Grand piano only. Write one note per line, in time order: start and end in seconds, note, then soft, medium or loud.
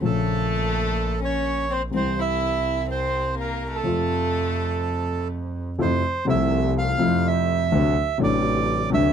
0.01 1.85 A#1 medium
0.01 1.84 A#2 medium
0.01 1.84 C#3 soft
0.01 1.84 F3 medium
0.01 1.86 C#4 medium
1.91 3.76 C2 medium
1.91 3.75 C3 medium
1.91 3.75 E3 soft
1.91 3.76 G3 soft
1.96 3.77 E4 medium
3.83 5.70 F2 medium
3.83 5.69 C3 soft
3.83 5.70 F3 medium
3.83 5.70 A3 soft
3.83 5.71 F4 medium
5.78 6.00 F2 medium
5.78 5.99 C3 medium
5.78 6.00 F3 medium
5.78 6.00 A3 medium
5.78 6.00 E4 medium
6.26 6.97 C2 medium
6.26 6.97 C3 medium
6.26 6.96 F3 medium
6.26 6.97 A3 medium
6.26 6.98 E4 medium
6.98 7.69 F2 medium
6.98 7.68 C3 medium
6.98 7.69 F3 medium
6.98 7.69 A3 medium
6.98 7.70 E4 medium
7.72 7.93 D2 medium
7.72 7.93 C3 medium
7.72 7.93 D3 medium
7.72 7.92 F#3 medium
7.72 7.93 A3 medium
7.72 7.93 D4 medium
8.18 8.88 A1 medium
8.18 8.88 A2 medium
8.18 8.87 C3 medium
8.18 8.88 F#3 medium
8.18 8.89 A3 medium
8.18 8.89 D4 medium
8.90 9.13 D2 medium
8.90 9.13 C3 medium
8.90 9.13 D3 medium
8.90 9.13 F#3 medium
8.90 9.13 A3 medium
8.94 9.13 D4 medium